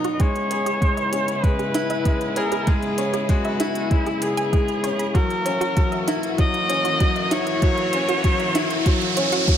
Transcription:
Already playing: string section B2 D#4 A#5, upright piano F#3 B3 D#4 F#4
0.04 synth arpeggio sound F#4, closed hi-hat
0.13 viola D#5
0.20 string section C#3 B3 E4, upright piano G#3, synth arpeggio sound G#4, viola C#5, kick, closed hi-hat
0.36 closed hi-hat
0.51 upright piano G#4, synth arpeggio sound C#5, closed hi-hat
0.66 synth arpeggio sound G#4, closed hi-hat
0.82 upright piano G#3, kick, closed hi-hat
0.97 synth arpeggio sound E5, closed hi-hat
1.13 upright piano C#4, synth arpeggio sound G#4, closed hi-hat
1.28 closed hi-hat
1.43 upright piano G#3, viola B4, synth arpeggio sound C#5, kick, closed hi-hat
1.59 synth arpeggio sound G#4, closed hi-hat
1.74 upright piano E4, closed hi-hat
1.90 synth arpeggio sound E5, closed hi-hat
2.05 upright piano G#3, synth arpeggio sound G#4, kick, closed hi-hat
2.21 closed hi-hat
2.36 upright piano G#4, viola A#4, synth arpeggio sound C#5, closed hi-hat
2.52 synth arpeggio sound G#4, closed hi-hat
2.67 upright piano G#3, synth arpeggio sound G#4, viola G#4, kick, closed hi-hat
2.82 closed hi-hat
2.98 upright piano C#4, synth arpeggio sound C#5, closed hi-hat
3.14 synth arpeggio sound G#4, closed hi-hat
3.29 upright piano G#3, viola F#4, kick, closed hi-hat
3.45 synth arpeggio sound E5, closed hi-hat
3.60 upright piano E4, synth arpeggio sound G#4, closed hi-hat
3.75 closed hi-hat
3.91 upright piano G#3, viola E4, synth arpeggio sound C#5, kick, closed hi-hat
4.06 synth arpeggio sound G#4, closed hi-hat
4.22 upright piano G#4, viola G#4, closed hi-hat
4.37 synth arpeggio sound G#5, closed hi-hat
4.53 upright piano G#3, synth arpeggio sound G#4, kick, closed hi-hat
4.68 closed hi-hat
4.84 upright piano C#4, synth arpeggio sound C#5, closed hi-hat
4.99 synth arpeggio sound B5, closed hi-hat
5.15 string section E3 A#3 F#4, upright piano F#3, synth arpeggio sound F#4, viola A#4, kick, closed hi-hat, riser
5.30 closed hi-hat
5.46 upright piano C#4, synth arpeggio sound C#5, closed hi-hat, mid tom
5.61 synth arpeggio sound F#4, closed hi-hat
5.77 upright piano F#3, kick, closed hi-hat
5.92 synth arpeggio sound E5, closed hi-hat
6.07 upright piano E4, synth arpeggio sound F#4, closed hi-hat
6.23 closed hi-hat
6.38 upright piano F#3, synth arpeggio sound F#4, viola D#5, kick, closed hi-hat, mid tom
6.54 closed hi-hat
6.69 upright piano C#4, synth arpeggio sound C#5, closed hi-hat
6.85 synth arpeggio sound F#4, closed hi-hat
7.00 upright piano F#3, kick, closed hi-hat
7.16 synth arpeggio sound E5, closed hi-hat
7.31 upright piano E4, synth arpeggio sound F#4, viola C#5, closed hi-hat, mid tom
7.47 closed hi-hat
7.62 upright piano F#3, synth arpeggio sound F#4, kick, closed hi-hat
7.77 closed hi-hat
7.93 upright piano C#4, synth arpeggio sound C#5, closed hi-hat
8.09 synth arpeggio sound F#4, closed hi-hat
8.24 upright piano F#3, kick, closed hi-hat, mid tom
8.40 synth arpeggio sound E5, closed hi-hat
8.55 upright piano E4, synth arpeggio sound F#4, closed hi-hat
8.70 closed hi-hat
8.86 upright piano F#3, synth arpeggio sound F#4, kick, closed hi-hat
9.01 closed hi-hat
9.17 upright piano C#4, synth arpeggio sound C#5, closed hi-hat, mid tom
9.32 synth arpeggio sound F#4, closed hi-hat
9.48 upright piano F#3, kick, closed hi-hat

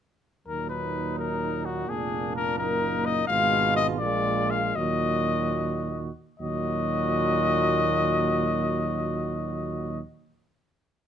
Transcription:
0.47 tuba D#2, trombone A#2, french horn F#3, flugelhorn D#4, trumpet A#4
0.69 trumpet B4
1.19 trumpet A#4
1.65 trumpet F#4
1.88 tuba F1, french horn A#3, flugelhorn D4, trumpet G#4
2.36 trumpet A#4
2.58 tuba F#1, flugelhorn D#4, trumpet A#4
3.06 trumpet D#5
3.28 tuba G#1, trombone B2, french horn G#3, flugelhorn F4, trumpet F5
3.76 trumpet D#5
3.99 tuba A#1, trombone A#2, french horn G#3, flugelhorn F4, trumpet D5
4.51 trumpet F5
4.76 tuba D#2, trombone A#2, french horn F#3, flugelhorn F#4, trumpet D#5
6.40 tuba D#2, trombone A#2, french horn F#3, flugelhorn F#4, trumpet D#5

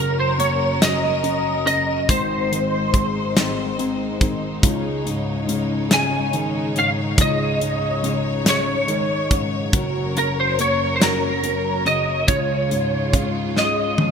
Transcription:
Already playing: upright piano F#1 F#2 C#3, string section F#2 F#3 C#4 A#4, steel-string acoustic guitar F#4 A#4, lead electric guitar A#4
0.00 steel-string acoustic guitar C#4
0.20 lead electric guitar C5
0.38 steel-string acoustic guitar F#3 C#4 F#4 A#4, upright piano A#3, lead electric guitar C#5, closed hi-hat
0.80 steel-string acoustic guitar F#3 C#4 F#4 A#4, upright piano F#4, lead electric guitar D#5, snare, closed hi-hat
1.23 steel-string acoustic guitar F#3 C#4 F#4 A#4, upright piano C#4, closed hi-hat
1.65 upright piano C#3, steel-string acoustic guitar C#4 F#4 A#4, lead electric guitar D#5, closed hi-hat
2.07 upright piano G#1 G#2, steel-string acoustic guitar G#2 D#3 G#3 C4 D#4 G#4, string section G#2 G#3 D#4 C5, lead electric guitar C5, kick, closed hi-hat
2.50 upright piano D#3, steel-string acoustic guitar G#3 C4 D#4 G#4, closed hi-hat
2.93 steel-string acoustic guitar G#3 C4 D#4 G#4, upright piano G#3, kick, closed hi-hat
3.36 steel-string acoustic guitar G#2 D#3 G#3 C4 D#4 G#4, upright piano D#4, snare, closed hi-hat
3.77 steel-string acoustic guitar G#3 C4 D#4 G#4, upright piano C4, closed hi-hat
4.20 upright piano D#3, steel-string acoustic guitar G#3 C4 D#4 G#4, kick, closed hi-hat
4.62 upright piano C#2, steel-string acoustic guitar C#3 G#3 C#4 D#4 G#4, string section C#3 C#5, kick, closed hi-hat
5.04 upright piano G#2, steel-string acoustic guitar C#4 D#4 G#4, closed hi-hat
5.46 upright piano C#3, steel-string acoustic guitar G#3 C#4 D#4 G#4, closed hi-hat
5.89 steel-string acoustic guitar C#3 G#3 C#4 D#4 G#4, upright piano G#3, snare, closed hi-hat
5.94 lead electric guitar G#5
6.32 upright piano D#3, steel-string acoustic guitar G#3 C#4 D#4 G#4, closed hi-hat
6.75 upright piano G#2, steel-string acoustic guitar C#4 D#4 G#4, lead electric guitar F5, closed hi-hat
7.17 upright piano C#2, steel-string acoustic guitar C#3 G#3 C#4 D#4 G#4, lead electric guitar D#5, kick, closed hi-hat
7.59 upright piano G#2, steel-string acoustic guitar C#4 D#4 G#4, closed hi-hat
8.02 upright piano C#3, steel-string acoustic guitar G#3 C#4 D#4 G#4, closed hi-hat
8.44 steel-string acoustic guitar C#3 G#3 C#4 D#4 G#4, upright piano G#3, snare, closed hi-hat
8.49 lead electric guitar C#5
8.87 upright piano D#3, steel-string acoustic guitar G#3 C#4 D#4 G#4, closed hi-hat
9.30 upright piano G#2, steel-string acoustic guitar C#4 D#4 G#4, kick, closed hi-hat
9.72 upright piano F#1 F#2, string section F#2 F#3 A#4, steel-string acoustic guitar F#3 C#4 F#4 A#4, kick, closed hi-hat
10.15 upright piano C#3, steel-string acoustic guitar C#4 F#4 A#4, lead electric guitar A#4, closed hi-hat
10.40 lead electric guitar C5
10.57 steel-string acoustic guitar F#3 C#4 F#4 A#4, upright piano A#3, lead electric guitar C#5, closed hi-hat
10.96 lead electric guitar C5
11.00 steel-string acoustic guitar F#3 C#4 F#4 A#4, upright piano F#4, lead electric guitar A#4, snare, closed hi-hat
11.43 steel-string acoustic guitar F#3 C#4 F#4 A#4, upright piano C#4, closed hi-hat
11.85 upright piano C#3, steel-string acoustic guitar C#4 F#4 A#4, lead electric guitar D#5, closed hi-hat
12.28 upright piano C#2, steel-string acoustic guitar C#3 G#3 C#4 F4 G#4, string section C#3 G#3 F4, lead electric guitar C#5, kick, closed hi-hat
12.70 upright piano G#2, steel-string acoustic guitar C#4 F4 G#4, closed hi-hat
13.12 upright piano C#3, steel-string acoustic guitar G#3 C#4 F4 G#4, kick, closed hi-hat
13.55 steel-string acoustic guitar C#3 G#3 C#4 F4 G#4, upright piano G#3, lead electric guitar D#5, snare
13.97 upright piano F3, steel-string acoustic guitar G#3 C#4 F4 G#4, high tom

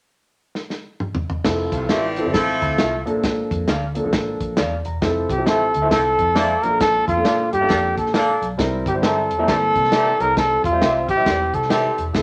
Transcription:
0.55 snare
0.70 snare
1.00 mid tom
1.15 floor tom
1.30 floor tom
1.44 fingered electric bass F1, upright piano F3 C4 E4 A4, kick, snare, crash
1.72 fingered electric bass C2, horn section C3 F3 A3 F4, kick, closed hi-hat
1.89 fingered electric bass A1, horn section E3 G3 C4 G4, clean electric guitar F4 A4 E5, snare, closed hi-hat
2.16 upright piano F3 C4 E4 A4, closed hi-hat
2.25 fingered electric bass G1, upright piano F3 C4 E4 A4
2.33 fingered electric bass A1, horn section F3 A3 E4 A4, kick, snare, closed hi-hat
2.62 fingered electric bass D2, kick, closed hi-hat
2.78 fingered electric bass C2, clean electric guitar F4 A4 E5, snare, closed hi-hat
3.06 fingered electric bass A#2, upright piano F3 A#3 D4 A4, closed hi-hat
3.23 kick, snare, closed hi-hat
3.51 fingered electric bass F2, kick, closed hi-hat
3.68 fingered electric bass D2, clean electric guitar A4 D5 F5, snare, closed hi-hat
3.95 upright piano F3 A#3 D4 A4, closed hi-hat
4.04 fingered electric bass A#1, upright piano F3 A#3 D4 A4
4.13 fingered electric bass A1, kick, snare, closed hi-hat
4.41 fingered electric bass A#1, kick, closed hi-hat
4.57 fingered electric bass E2, clean electric guitar A4 D5 F5, upright piano D5, snare, closed hi-hat
4.85 fingered electric bass E1, upright piano A#5, closed hi-hat
5.01 fingered electric bass F1, upright piano F3 C4 E4 A4, kick, snare, closed hi-hat
5.30 fingered electric bass C2, trumpet G4, kick, closed hi-hat
5.38 upright piano F3 C4 E4 G4
5.46 fingered electric bass A1, horn section F3 A3 E4 A4, clean electric guitar A4 C5 E5, trumpet A4, snare, closed hi-hat
5.74 fingered electric bass D2, closed hi-hat
5.82 upright piano F3 C4 E4 A4, clean electric guitar A4 C5 E5
5.91 fingered electric bass C2, horn section F3 A3 E4 A4, trumpet A4, kick, snare, closed hi-hat
6.19 fingered electric bass F2, kick, closed hi-hat
6.35 horn section A#3 D4 A4 D5, clean electric guitar A4 C5 E5, snare, closed hi-hat
6.63 fingered electric bass A#1, upright piano F3 A#3 D4 G4, trumpet A#4, closed hi-hat
6.69 upright piano A4
6.80 trumpet A4, kick, snare, closed hi-hat
7.08 fingered electric bass F2, trumpet F4, kick, closed hi-hat
7.16 upright piano F3 A#3 D4 A4
7.24 fingered electric bass A#2, horn section A#3 D4 A4 D5, clean electric guitar A4 D5 F5, snare, closed hi-hat
7.53 fingered electric bass G2, trumpet G4, closed hi-hat
7.61 upright piano F3 A#3 D4 A4, clean electric guitar A4 D5 F5
7.68 fingered electric bass F2, horn section A#3 D4 A4 D5, kick, snare, closed hi-hat
7.97 fingered electric bass A#2, trumpet A4, kick, closed hi-hat
8.06 snare
8.14 horn section A#3 D4 A4 D5, clean electric guitar A4 D5 F5, trumpet A4, snare, closed hi-hat
8.42 fingered electric bass B1, closed hi-hat
8.58 fingered electric bass C2, upright piano G3 C4 E4 A#4, kick, snare, closed hi-hat
8.86 fingered electric bass G1, trumpet G4, kick, closed hi-hat
8.94 upright piano G3 C4 E4 C5
9.02 horn section E3 G3 C4 G4, clean electric guitar G4 A#4 E5, trumpet A4, snare, closed hi-hat
9.31 fingered electric bass E1, closed hi-hat
9.38 upright piano G3 A#3 C4 E4, clean electric guitar G4 A#4 E5
9.47 fingered electric bass G1, horn section E3 G3 C4 G4, trumpet A4, kick, snare, closed hi-hat
9.75 fingered electric bass C3, kick, closed hi-hat
9.84 snare
9.92 horn section E3 G3 C4 G4, clean electric guitar G4 A#4 E5, snare, closed hi-hat
10.19 fingered electric bass C2, upright piano G3 C4 E4 A4, trumpet A#4, closed hi-hat
10.37 trumpet A4, kick, snare, closed hi-hat
10.64 fingered electric bass E1, trumpet F4, kick, closed hi-hat
10.72 upright piano G3 C4 C5 E5
10.81 fingered electric bass C2, horn section E3 G3 C4 G4, clean electric guitar G4 C5 E5, snare, closed hi-hat
11.08 fingered electric bass A1, trumpet G4, kick, closed hi-hat
11.17 upright piano G3 C4 E4 G4, clean electric guitar G4 C5 E5
11.26 fingered electric bass E1, horn section E3 G3 C4 G4, kick, snare, closed hi-hat
11.53 fingered electric bass C3, trumpet A4, kick, closed hi-hat
11.62 snare
11.70 horn section E3 G3 C4 G4, clean electric guitar G4 C5 E5, trumpet A4, snare, closed hi-hat
11.98 fingered electric bass E1, closed hi-hat
12.13 fingered electric bass F1, upright piano F3 C4 E4 A4, kick, snare, closed hi-hat

